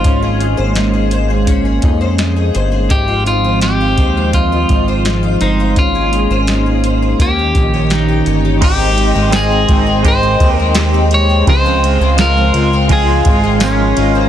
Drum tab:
CC |--------|--------|--------|x-------|
RD |--------|--------|--------|xxxxxxxx|
HH |xxxxxxxx|xxxxxxxx|xxxxxxxx|--------|
TB |--------|--------|--------|--x---x-|
SD |--o---o-|--o---o-|--o---o-|--o---o-|
BD |o---oo--|o--ooo--|o---oo--|o--ooo--|

CC |--------|
RD |xxxxxxxx|
HH |--------|
TB |--x---x-|
SD |--o---o-|
BD |o---oo--|